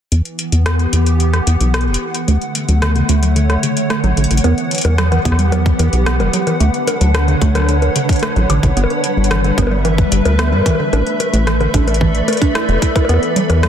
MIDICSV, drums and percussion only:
0, 0, Header, 1, 2, 480
1, 0, Start_track
1, 0, Tempo, 540541
1, 105, Time_signature, 4, 2, 24, 8
1, 12152, End_track
2, 0, Start_track
2, 0, Title_t, "Drums"
2, 105, Note_on_c, 9, 42, 49
2, 194, Note_off_c, 9, 42, 0
2, 225, Note_on_c, 9, 42, 25
2, 314, Note_off_c, 9, 42, 0
2, 345, Note_on_c, 9, 42, 87
2, 434, Note_off_c, 9, 42, 0
2, 465, Note_on_c, 9, 42, 51
2, 554, Note_off_c, 9, 42, 0
2, 585, Note_on_c, 9, 37, 105
2, 585, Note_on_c, 9, 42, 50
2, 674, Note_off_c, 9, 37, 0
2, 674, Note_off_c, 9, 42, 0
2, 705, Note_on_c, 9, 42, 26
2, 794, Note_off_c, 9, 42, 0
2, 825, Note_on_c, 9, 42, 92
2, 914, Note_off_c, 9, 42, 0
2, 945, Note_on_c, 9, 42, 52
2, 1034, Note_off_c, 9, 42, 0
2, 1065, Note_on_c, 9, 42, 49
2, 1154, Note_off_c, 9, 42, 0
2, 1185, Note_on_c, 9, 37, 55
2, 1185, Note_on_c, 9, 42, 24
2, 1274, Note_off_c, 9, 37, 0
2, 1274, Note_off_c, 9, 42, 0
2, 1305, Note_on_c, 9, 42, 93
2, 1394, Note_off_c, 9, 42, 0
2, 1425, Note_on_c, 9, 42, 49
2, 1514, Note_off_c, 9, 42, 0
2, 1545, Note_on_c, 9, 37, 102
2, 1545, Note_on_c, 9, 42, 50
2, 1605, Note_off_c, 9, 42, 0
2, 1605, Note_on_c, 9, 42, 25
2, 1634, Note_off_c, 9, 37, 0
2, 1694, Note_off_c, 9, 42, 0
2, 1725, Note_on_c, 9, 42, 92
2, 1813, Note_off_c, 9, 42, 0
2, 1905, Note_on_c, 9, 42, 49
2, 1994, Note_off_c, 9, 42, 0
2, 2025, Note_on_c, 9, 42, 49
2, 2113, Note_off_c, 9, 42, 0
2, 2145, Note_on_c, 9, 42, 25
2, 2234, Note_off_c, 9, 42, 0
2, 2265, Note_on_c, 9, 42, 92
2, 2354, Note_off_c, 9, 42, 0
2, 2385, Note_on_c, 9, 42, 54
2, 2473, Note_off_c, 9, 42, 0
2, 2505, Note_on_c, 9, 37, 115
2, 2505, Note_on_c, 9, 42, 52
2, 2594, Note_off_c, 9, 37, 0
2, 2594, Note_off_c, 9, 42, 0
2, 2625, Note_on_c, 9, 42, 27
2, 2713, Note_off_c, 9, 42, 0
2, 2744, Note_on_c, 9, 42, 93
2, 2833, Note_off_c, 9, 42, 0
2, 2865, Note_on_c, 9, 42, 53
2, 2953, Note_off_c, 9, 42, 0
2, 2984, Note_on_c, 9, 42, 51
2, 3073, Note_off_c, 9, 42, 0
2, 3105, Note_on_c, 9, 37, 58
2, 3105, Note_on_c, 9, 42, 25
2, 3194, Note_off_c, 9, 37, 0
2, 3194, Note_off_c, 9, 42, 0
2, 3225, Note_on_c, 9, 42, 92
2, 3314, Note_off_c, 9, 42, 0
2, 3345, Note_on_c, 9, 42, 52
2, 3434, Note_off_c, 9, 42, 0
2, 3465, Note_on_c, 9, 37, 109
2, 3465, Note_on_c, 9, 42, 50
2, 3554, Note_off_c, 9, 37, 0
2, 3554, Note_off_c, 9, 42, 0
2, 3585, Note_on_c, 9, 42, 26
2, 3674, Note_off_c, 9, 42, 0
2, 3705, Note_on_c, 9, 42, 51
2, 3764, Note_off_c, 9, 42, 0
2, 3764, Note_on_c, 9, 42, 62
2, 3824, Note_off_c, 9, 42, 0
2, 3824, Note_on_c, 9, 42, 67
2, 3884, Note_off_c, 9, 42, 0
2, 3884, Note_on_c, 9, 42, 78
2, 3944, Note_off_c, 9, 42, 0
2, 3944, Note_on_c, 9, 42, 52
2, 3944, Note_on_c, 9, 60, 54
2, 4033, Note_off_c, 9, 42, 0
2, 4033, Note_off_c, 9, 60, 0
2, 4065, Note_on_c, 9, 42, 26
2, 4154, Note_off_c, 9, 42, 0
2, 4185, Note_on_c, 9, 42, 41
2, 4215, Note_off_c, 9, 42, 0
2, 4215, Note_on_c, 9, 42, 51
2, 4245, Note_off_c, 9, 42, 0
2, 4245, Note_on_c, 9, 42, 65
2, 4275, Note_off_c, 9, 42, 0
2, 4275, Note_on_c, 9, 42, 76
2, 4305, Note_off_c, 9, 42, 0
2, 4305, Note_on_c, 9, 42, 54
2, 4305, Note_on_c, 9, 60, 80
2, 4394, Note_off_c, 9, 42, 0
2, 4394, Note_off_c, 9, 60, 0
2, 4425, Note_on_c, 9, 37, 114
2, 4425, Note_on_c, 9, 42, 54
2, 4514, Note_off_c, 9, 37, 0
2, 4514, Note_off_c, 9, 42, 0
2, 4545, Note_on_c, 9, 42, 27
2, 4545, Note_on_c, 9, 60, 54
2, 4634, Note_off_c, 9, 42, 0
2, 4634, Note_off_c, 9, 60, 0
2, 4665, Note_on_c, 9, 36, 110
2, 4665, Note_on_c, 9, 42, 93
2, 4725, Note_on_c, 9, 37, 62
2, 4753, Note_off_c, 9, 36, 0
2, 4754, Note_off_c, 9, 42, 0
2, 4785, Note_on_c, 9, 42, 52
2, 4814, Note_off_c, 9, 37, 0
2, 4874, Note_off_c, 9, 42, 0
2, 4904, Note_on_c, 9, 42, 54
2, 4904, Note_on_c, 9, 60, 81
2, 4993, Note_off_c, 9, 42, 0
2, 4993, Note_off_c, 9, 60, 0
2, 5025, Note_on_c, 9, 36, 114
2, 5025, Note_on_c, 9, 42, 25
2, 5113, Note_off_c, 9, 36, 0
2, 5113, Note_off_c, 9, 42, 0
2, 5145, Note_on_c, 9, 42, 93
2, 5145, Note_on_c, 9, 60, 53
2, 5234, Note_off_c, 9, 42, 0
2, 5234, Note_off_c, 9, 60, 0
2, 5265, Note_on_c, 9, 42, 51
2, 5353, Note_off_c, 9, 42, 0
2, 5385, Note_on_c, 9, 37, 108
2, 5385, Note_on_c, 9, 42, 48
2, 5474, Note_off_c, 9, 37, 0
2, 5474, Note_off_c, 9, 42, 0
2, 5505, Note_on_c, 9, 42, 26
2, 5505, Note_on_c, 9, 60, 77
2, 5594, Note_off_c, 9, 42, 0
2, 5594, Note_off_c, 9, 60, 0
2, 5625, Note_on_c, 9, 42, 89
2, 5714, Note_off_c, 9, 42, 0
2, 5745, Note_on_c, 9, 42, 50
2, 5745, Note_on_c, 9, 60, 51
2, 5834, Note_off_c, 9, 42, 0
2, 5834, Note_off_c, 9, 60, 0
2, 5865, Note_on_c, 9, 42, 50
2, 5954, Note_off_c, 9, 42, 0
2, 5985, Note_on_c, 9, 42, 25
2, 6074, Note_off_c, 9, 42, 0
2, 6105, Note_on_c, 9, 42, 92
2, 6105, Note_on_c, 9, 60, 71
2, 6194, Note_off_c, 9, 42, 0
2, 6194, Note_off_c, 9, 60, 0
2, 6225, Note_on_c, 9, 42, 55
2, 6314, Note_off_c, 9, 42, 0
2, 6345, Note_on_c, 9, 37, 110
2, 6345, Note_on_c, 9, 42, 52
2, 6345, Note_on_c, 9, 60, 51
2, 6434, Note_off_c, 9, 37, 0
2, 6434, Note_off_c, 9, 42, 0
2, 6434, Note_off_c, 9, 60, 0
2, 6466, Note_on_c, 9, 42, 28
2, 6554, Note_off_c, 9, 42, 0
2, 6585, Note_on_c, 9, 36, 120
2, 6585, Note_on_c, 9, 42, 92
2, 6674, Note_off_c, 9, 36, 0
2, 6674, Note_off_c, 9, 42, 0
2, 6706, Note_on_c, 9, 37, 59
2, 6706, Note_on_c, 9, 42, 53
2, 6706, Note_on_c, 9, 60, 79
2, 6726, Note_off_c, 9, 37, 0
2, 6726, Note_on_c, 9, 37, 48
2, 6745, Note_off_c, 9, 37, 0
2, 6745, Note_on_c, 9, 37, 42
2, 6765, Note_off_c, 9, 37, 0
2, 6765, Note_on_c, 9, 37, 33
2, 6785, Note_off_c, 9, 37, 0
2, 6785, Note_on_c, 9, 37, 26
2, 6794, Note_off_c, 9, 42, 0
2, 6794, Note_off_c, 9, 60, 0
2, 6806, Note_off_c, 9, 37, 0
2, 6806, Note_on_c, 9, 37, 21
2, 6825, Note_on_c, 9, 42, 53
2, 6894, Note_off_c, 9, 37, 0
2, 6914, Note_off_c, 9, 42, 0
2, 6945, Note_on_c, 9, 42, 27
2, 6945, Note_on_c, 9, 60, 48
2, 7034, Note_off_c, 9, 42, 0
2, 7034, Note_off_c, 9, 60, 0
2, 7065, Note_on_c, 9, 42, 94
2, 7154, Note_off_c, 9, 42, 0
2, 7185, Note_on_c, 9, 36, 84
2, 7185, Note_on_c, 9, 42, 49
2, 7215, Note_off_c, 9, 42, 0
2, 7215, Note_on_c, 9, 42, 40
2, 7246, Note_off_c, 9, 42, 0
2, 7246, Note_on_c, 9, 42, 33
2, 7274, Note_off_c, 9, 36, 0
2, 7276, Note_off_c, 9, 42, 0
2, 7276, Note_on_c, 9, 42, 28
2, 7306, Note_off_c, 9, 42, 0
2, 7306, Note_on_c, 9, 37, 113
2, 7306, Note_on_c, 9, 42, 51
2, 7306, Note_on_c, 9, 60, 75
2, 7394, Note_off_c, 9, 37, 0
2, 7394, Note_off_c, 9, 42, 0
2, 7394, Note_off_c, 9, 60, 0
2, 7426, Note_on_c, 9, 42, 27
2, 7515, Note_off_c, 9, 42, 0
2, 7546, Note_on_c, 9, 42, 90
2, 7546, Note_on_c, 9, 60, 51
2, 7634, Note_off_c, 9, 42, 0
2, 7634, Note_off_c, 9, 60, 0
2, 7665, Note_on_c, 9, 36, 101
2, 7666, Note_on_c, 9, 42, 50
2, 7754, Note_off_c, 9, 36, 0
2, 7754, Note_off_c, 9, 42, 0
2, 7786, Note_on_c, 9, 42, 51
2, 7846, Note_on_c, 9, 60, 74
2, 7875, Note_off_c, 9, 42, 0
2, 7906, Note_on_c, 9, 42, 25
2, 7935, Note_off_c, 9, 60, 0
2, 7995, Note_off_c, 9, 42, 0
2, 8025, Note_on_c, 9, 42, 88
2, 8114, Note_off_c, 9, 42, 0
2, 8206, Note_on_c, 9, 42, 53
2, 8265, Note_off_c, 9, 42, 0
2, 8265, Note_on_c, 9, 37, 114
2, 8265, Note_on_c, 9, 42, 49
2, 8265, Note_on_c, 9, 60, 50
2, 8354, Note_off_c, 9, 37, 0
2, 8354, Note_off_c, 9, 42, 0
2, 8354, Note_off_c, 9, 60, 0
2, 8386, Note_on_c, 9, 42, 28
2, 8475, Note_off_c, 9, 42, 0
2, 8505, Note_on_c, 9, 36, 119
2, 8506, Note_on_c, 9, 42, 94
2, 8506, Note_on_c, 9, 60, 33
2, 8546, Note_off_c, 9, 60, 0
2, 8546, Note_on_c, 9, 60, 45
2, 8585, Note_off_c, 9, 60, 0
2, 8585, Note_on_c, 9, 60, 62
2, 8594, Note_off_c, 9, 36, 0
2, 8595, Note_off_c, 9, 42, 0
2, 8674, Note_off_c, 9, 60, 0
2, 8746, Note_on_c, 9, 42, 52
2, 8746, Note_on_c, 9, 60, 51
2, 8834, Note_off_c, 9, 42, 0
2, 8834, Note_off_c, 9, 60, 0
2, 8865, Note_on_c, 9, 36, 121
2, 8866, Note_on_c, 9, 42, 25
2, 8954, Note_off_c, 9, 36, 0
2, 8954, Note_off_c, 9, 42, 0
2, 8985, Note_on_c, 9, 42, 95
2, 9074, Note_off_c, 9, 42, 0
2, 9106, Note_on_c, 9, 42, 53
2, 9106, Note_on_c, 9, 60, 75
2, 9195, Note_off_c, 9, 42, 0
2, 9195, Note_off_c, 9, 60, 0
2, 9226, Note_on_c, 9, 37, 122
2, 9226, Note_on_c, 9, 42, 51
2, 9314, Note_off_c, 9, 37, 0
2, 9314, Note_off_c, 9, 42, 0
2, 9346, Note_on_c, 9, 60, 23
2, 9386, Note_off_c, 9, 60, 0
2, 9386, Note_on_c, 9, 60, 26
2, 9426, Note_off_c, 9, 60, 0
2, 9426, Note_on_c, 9, 60, 30
2, 9465, Note_on_c, 9, 36, 79
2, 9466, Note_off_c, 9, 60, 0
2, 9466, Note_on_c, 9, 42, 87
2, 9466, Note_on_c, 9, 60, 35
2, 9506, Note_off_c, 9, 60, 0
2, 9506, Note_on_c, 9, 60, 38
2, 9546, Note_off_c, 9, 60, 0
2, 9546, Note_on_c, 9, 60, 41
2, 9554, Note_off_c, 9, 36, 0
2, 9555, Note_off_c, 9, 42, 0
2, 9635, Note_off_c, 9, 60, 0
2, 9706, Note_on_c, 9, 42, 47
2, 9706, Note_on_c, 9, 60, 72
2, 9794, Note_off_c, 9, 42, 0
2, 9794, Note_off_c, 9, 60, 0
2, 9826, Note_on_c, 9, 42, 25
2, 9915, Note_off_c, 9, 42, 0
2, 9946, Note_on_c, 9, 42, 85
2, 9946, Note_on_c, 9, 60, 48
2, 10035, Note_off_c, 9, 42, 0
2, 10035, Note_off_c, 9, 60, 0
2, 10066, Note_on_c, 9, 42, 48
2, 10155, Note_off_c, 9, 42, 0
2, 10186, Note_on_c, 9, 37, 113
2, 10186, Note_on_c, 9, 42, 49
2, 10275, Note_off_c, 9, 37, 0
2, 10275, Note_off_c, 9, 42, 0
2, 10306, Note_on_c, 9, 42, 26
2, 10306, Note_on_c, 9, 60, 76
2, 10395, Note_off_c, 9, 42, 0
2, 10395, Note_off_c, 9, 60, 0
2, 10425, Note_on_c, 9, 36, 115
2, 10425, Note_on_c, 9, 42, 92
2, 10514, Note_off_c, 9, 36, 0
2, 10514, Note_off_c, 9, 42, 0
2, 10546, Note_on_c, 9, 42, 48
2, 10546, Note_on_c, 9, 60, 50
2, 10606, Note_off_c, 9, 42, 0
2, 10606, Note_on_c, 9, 42, 53
2, 10635, Note_off_c, 9, 60, 0
2, 10665, Note_on_c, 9, 36, 84
2, 10695, Note_off_c, 9, 42, 0
2, 10754, Note_off_c, 9, 36, 0
2, 10786, Note_on_c, 9, 42, 24
2, 10875, Note_off_c, 9, 42, 0
2, 10906, Note_on_c, 9, 42, 85
2, 10906, Note_on_c, 9, 60, 73
2, 10946, Note_off_c, 9, 42, 0
2, 10946, Note_on_c, 9, 42, 67
2, 10986, Note_off_c, 9, 42, 0
2, 10986, Note_on_c, 9, 42, 56
2, 10994, Note_off_c, 9, 60, 0
2, 11025, Note_on_c, 9, 36, 86
2, 11026, Note_off_c, 9, 42, 0
2, 11026, Note_on_c, 9, 42, 50
2, 11114, Note_off_c, 9, 36, 0
2, 11115, Note_off_c, 9, 42, 0
2, 11146, Note_on_c, 9, 37, 119
2, 11146, Note_on_c, 9, 42, 47
2, 11146, Note_on_c, 9, 60, 44
2, 11235, Note_off_c, 9, 37, 0
2, 11235, Note_off_c, 9, 42, 0
2, 11235, Note_off_c, 9, 60, 0
2, 11266, Note_on_c, 9, 42, 25
2, 11355, Note_off_c, 9, 42, 0
2, 11385, Note_on_c, 9, 36, 81
2, 11386, Note_on_c, 9, 42, 91
2, 11474, Note_off_c, 9, 36, 0
2, 11475, Note_off_c, 9, 42, 0
2, 11505, Note_on_c, 9, 36, 108
2, 11506, Note_on_c, 9, 42, 46
2, 11506, Note_on_c, 9, 60, 66
2, 11586, Note_off_c, 9, 60, 0
2, 11586, Note_on_c, 9, 60, 54
2, 11594, Note_off_c, 9, 36, 0
2, 11595, Note_off_c, 9, 42, 0
2, 11626, Note_off_c, 9, 60, 0
2, 11626, Note_on_c, 9, 42, 49
2, 11626, Note_on_c, 9, 60, 47
2, 11666, Note_off_c, 9, 60, 0
2, 11666, Note_on_c, 9, 60, 46
2, 11715, Note_off_c, 9, 42, 0
2, 11746, Note_on_c, 9, 42, 25
2, 11754, Note_off_c, 9, 60, 0
2, 11835, Note_off_c, 9, 42, 0
2, 11865, Note_on_c, 9, 42, 81
2, 11865, Note_on_c, 9, 64, 88
2, 11954, Note_off_c, 9, 42, 0
2, 11954, Note_off_c, 9, 64, 0
2, 11985, Note_on_c, 9, 42, 51
2, 11985, Note_on_c, 9, 60, 70
2, 12074, Note_off_c, 9, 42, 0
2, 12074, Note_off_c, 9, 60, 0
2, 12105, Note_on_c, 9, 37, 113
2, 12105, Note_on_c, 9, 42, 47
2, 12152, Note_off_c, 9, 37, 0
2, 12152, Note_off_c, 9, 42, 0
2, 12152, End_track
0, 0, End_of_file